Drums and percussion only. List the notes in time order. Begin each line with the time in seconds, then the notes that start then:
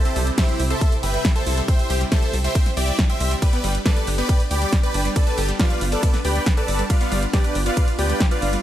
0.05 closed hi-hat
0.16 open hi-hat
0.27 closed hi-hat
0.38 kick, snare, closed hi-hat, ride
0.49 closed hi-hat
0.60 open hi-hat
0.70 closed hi-hat
0.81 kick, closed hi-hat, ride
0.92 closed hi-hat
1.03 open hi-hat
1.14 closed hi-hat
1.25 kick, snare, closed hi-hat, ride
1.36 closed hi-hat
1.47 open hi-hat
1.57 closed hi-hat
1.68 kick, closed hi-hat, ride
1.79 closed hi-hat
1.90 open hi-hat
2.01 closed hi-hat
2.12 kick, snare, closed hi-hat, ride
2.23 closed hi-hat
2.33 open hi-hat
2.44 closed hi-hat
2.55 kick, closed hi-hat, ride
2.66 snare, closed hi-hat
2.77 open hi-hat
2.88 closed hi-hat
2.99 kick, snare, closed hi-hat, ride
3.10 closed hi-hat
3.20 open hi-hat
3.31 closed hi-hat
3.42 kick, closed hi-hat, ride
3.53 closed hi-hat
3.64 open hi-hat
3.75 closed hi-hat
3.86 kick, snare, closed hi-hat, ride
3.96 closed hi-hat
4.07 open hi-hat
4.18 closed hi-hat
4.29 kick, closed hi-hat, ride
4.40 closed hi-hat
4.51 open hi-hat
4.62 closed hi-hat
4.73 kick, snare, closed hi-hat, ride
4.83 closed hi-hat
4.94 open hi-hat
5.05 closed hi-hat
5.16 kick, closed hi-hat, ride
5.27 closed hi-hat
5.38 open hi-hat
5.49 closed hi-hat
5.59 kick, snare, closed hi-hat, ride
5.70 closed hi-hat
5.81 open hi-hat
5.92 closed hi-hat
6.03 kick, closed hi-hat, ride
6.14 snare, closed hi-hat
6.25 open hi-hat
6.36 closed hi-hat
6.46 kick, snare, closed hi-hat, ride
6.57 closed hi-hat
6.68 open hi-hat
6.79 closed hi-hat
6.90 kick, closed hi-hat, ride
7.01 closed hi-hat
7.12 open hi-hat
7.23 closed hi-hat
7.33 kick, snare, closed hi-hat, ride
7.44 closed hi-hat
7.55 open hi-hat
7.66 closed hi-hat
7.77 kick, closed hi-hat, ride
7.88 closed hi-hat
7.99 open hi-hat
8.10 closed hi-hat
8.20 kick, snare, closed hi-hat, ride
8.31 closed hi-hat
8.42 open hi-hat
8.53 closed hi-hat